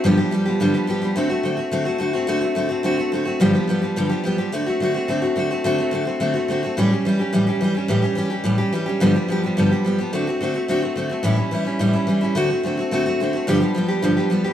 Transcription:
\new Staff \with { instrumentName = "Steel-string acoustic guitar" } { \time 4/4 \key d \mixolydian \tempo 4 = 214 <g, d f g b g'>8 <f g b g'>8 <f g b g'>8 <f g b g'>8 <g, d f g b g'>8 <f g b g'>8 <f g b g'>8 <f g b g'>8 | <d a c' fis'>8 <a c' fis'>8 <d a c' fis'>8 <a c' fis'>8 <d a c' fis'>8 <a c' fis'>8 <d a c' fis'>8 <a c' fis'>8 | <d a c' fis'>8 <a c' fis'>8 <d a c' fis'>8 <a c' fis'>8 <d a c' fis'>8 <a c' fis'>8 <d a c' fis'>8 <a c' fis'>8 | <g, d f g b g'>8 <f g b g'>8 <f g b g'>8 <f g b g'>8 <g, d f g b g'>8 <f g b g'>8 <f g b g'>8 <f g b g'>8 |
<d a c' fis'>8 <a c' fis'>8 <d a c' fis'>8 <a c' fis'>8 <d a c' fis'>8 <a c' fis'>8 <d a c' fis'>8 <a c' fis'>8 | <d a c' fis'>8 <a c' fis'>8 <d a c' fis'>8 <a c' fis'>8 <d a c' fis'>8 <a c' fis'>8 <d a c' fis'>8 <a c' fis'>8 | <a, e g cis' g'>8 <g cis' g'>8 <e g cis' g'>8 <g cis' g'>8 <a, e g cis' g'>8 <g cis' g'>8 <e g cis' g'>8 <g cis' g'>8 | <a, e g cis' g'>8 <g cis' g'>8 <e g cis' g'>8 <g cis' g'>8 <a, e g cis' g'>8 <g cis' g'>8 <e g cis' g'>8 <g cis' g'>8 |
<g, d f g b g'>8 <f g b g'>8 <f g b g'>8 <f g b g'>8 <g, d f g b g'>8 <f g b g'>8 <f g b g'>8 <f g b g'>8 | <d a c' fis'>8 <a c' fis'>8 <d a c' fis'>8 <a c' fis'>8 <d a c' fis'>8 <a c' fis'>8 <d a c' fis'>8 <a c' fis'>8 | <a, e g cis' e'>8 <g cis' e'>8 <e g cis' e'>8 <g cis' e'>8 <a, e g cis' e'>8 <g cis' e'>8 <e g cis' e'>8 <g cis' e'>8 | <d a c' fis'>8 <a c' fis'>8 <d a c' fis'>8 <a c' fis'>8 <d a c' fis'>8 <a c' fis'>8 <d a c' fis'>8 <a c' fis'>8 |
<g, d f g b g'>8 <f g b g'>8 <f g b g'>8 <f g b g'>8 <g, d f g b g'>8 <f g b g'>8 <f g b g'>8 <f g b g'>8 | }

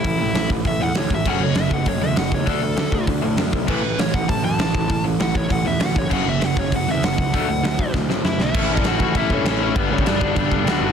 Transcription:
<<
  \new Staff \with { instrumentName = "Overdriven electric guitar" } { \time 4/4 \key a \major \tempo 4 = 198 e'4. r8 e''8 fis''8 cis''8 e''8 | fis''8 cis''8 e''8 fis''8 cis''8 e''8 fis''8 cis''8 | a'2 r2 | b'4 cis''8 fis''8 a''8 a''4.~ |
a''8 r8 fis''8 cis''8 fis''8 e''8 fis''8 cis''8 | fis''8 e''8 fis''8 cis''8 fis''8 e''8 fis''4~ | fis''2 r4 <e' e''>8 <e' e''>8~ | \key a \mixolydian <e' e''>4 <fis' fis''>4 <e' e''>8 <cis' cis''>4 <cis' cis''>8 |
<b b'>8 <cis' cis''>8 <d' d''>2 <fis' fis''>4 | }
  \new Staff \with { instrumentName = "Overdriven electric guitar" } { \clef bass \time 4/4 \key a \major <a, e>8 <a, e>8 <a, e>8 <a, e>8 <a, e>8 <a, e>8 <a, e>8 <a, e>8 | <fis a cis'>8 <fis a>8 <fis a>8 <fis a>8 <fis a>8 <fis a>8 <fis a>8 <fis a>8 | <d a d'>8 <d a>8 <d a>8 <d a>8 <d a>8 <d a>8 <d a>8 <d a>8 | <a, e a>8 <a, e>8 <a, e>8 <a, e>8 <a, e>8 <a, e>8 <a, e>8 <a, e>8 |
<a, e>8 <a, e>8 <a, e>8 <a, e>8 <a, e>8 <a, e>8 <a, e>8 <a, e>8 | <fis, cis fis>8 <fis, cis>8 <fis, cis>8 <fis, cis>8 <fis, cis>8 <fis, cis>8 <fis, cis>8 <fis, cis>8 | <d fis a>8 <d fis>8 <d fis>8 <d fis>8 <d fis>8 <d fis>8 <d fis>8 <d fis>8 | \key a \mixolydian <a, e a cis' e' a'>8 <a, e a cis' e' a'>8 <a, e a cis' e' a'>8 <a, e a cis' e' a'>8 <a, e a cis' e' a'>8 <a, e a cis' e' a'>8 <a, e a cis' e' a'>8 <a, e a cis' e' a'>8 |
<g, d g b d'>8 <g, d g b d'>8 <g, d g b d'>8 <g, d g b d'>8 <g, d g b d'>8 <g, d g b d'>8 <g, d g b d'>8 <g, d g b d'>8 | }
  \new Staff \with { instrumentName = "Overdriven electric guitar" } { \clef bass \time 4/4 \key a \major <a, e>8 <a, e>8 <a, e>8 <a, e>8 <a, e>8 <a, e>8 <a, e>8 <a, e>8 | <fis, cis fis>8 <fis, cis>8 <fis, cis>8 <fis, cis>8 <fis, cis>8 <fis, cis>8 <fis, cis>8 <fis, cis>8 | <d a d'>8 <d a>8 <d a>8 <d a>8 <d a>8 <d a>8 <d a>8 <d a>8 | <a, e a>8 <a, e>8 <a, e>8 <a, e>8 <a, e>8 <a, e>8 <a, e>8 <a, e>8 |
<a, e>8 <a, e>8 <a, e>8 <a, e>8 <a, e>8 <a, e>8 <a, e>8 <a, e>8 | <fis, cis fis>8 <fis, cis>8 <fis, cis>8 <fis, cis>8 <fis, cis>8 <fis, cis>8 <fis, cis>8 <fis, cis>8 | <d a d'>8 <d a>8 <d a>8 <d a>8 <d a>8 <d a>8 <d a>8 <d a>8 | \key a \mixolydian <a, e a>8 <a, e a>8 <a, e a>8 <a, e a>8 <a, e a>8 <a, e a>8 <a, e a>8 <a, e a>8 |
<g, d g>8 <g, d g>8 <g, d g>8 <g, d g>8 <g, d g>8 <g, d g>8 <g, d g>8 <g, d g>8 | }
  \new Staff \with { instrumentName = "Picked electric bass" } { \clef bass \time 4/4 \key a \major a,,8 a,,8 a,,8 a,,8 a,,8 e,8 d,8 gis,,8 | fis,,8 fis,,8 fis,,8 fis,,8 fis,,8 e,8 fis,,8 e,8 | d,8 d,8 d,8 d,8 d,8 a,8 fis,8 b,,8 | a,,8 a,,8 a,,8 a,,8 a,,8 fis,8 a,,8 a,,8 |
a,,8 a,,8 a,,8 a,,8 a,,8 e,8 d,8 fis,,8 | fis,,8 fis,,8 fis,,8 fis,,8 fis,,8 e,8 fis,,8 cis,8 | d,8 d,8 d,8 d,8 d,8 a,8 fis,8 b,,8 | \key a \mixolydian a,,8 a,,8 a,,8 a,,8 a,,8 g,8 a,,4 |
g,,8 g,,8 g,,8 g,,8 g,,8 g,,8 d,8 g,,8 | }
  \new DrumStaff \with { instrumentName = "Drums" } \drummode { \time 4/4 <hho bd>4 <hho sn>8 bd8 <hho bd>4 <hho sn>8 bd8 | <cymc bd>4 <hho sn>8 bd8 <hho bd>4 <hho sn>8 bd8 | <hho bd>4 <hho sn>8 bd8 <hho bd>4 <hho sn>8 bd8 | <cymc bd>4 <hho sn>8 bd8 <hho bd>4 <hho sn>8 bd8 |
<hho bd>4 <hho sn>8 bd8 <hho bd>4 <hho sn>8 bd8 | <cymc bd>4 <hho sn>8 bd8 <hho bd>4 <hho sn>8 bd8 | <hho bd>4 <hho sn>8 bd8 <bd sn>8 sn8 sn8 sn8 | <cymc bd>8. bd16 <cymc sn>8 bd8 <cymc bd>8 bd8 <cymc sn>4 |
<cymc bd>8. bd16 <cymc sn>8 bd8 <cymc bd>8 bd8 <cymc sn>4 | }
>>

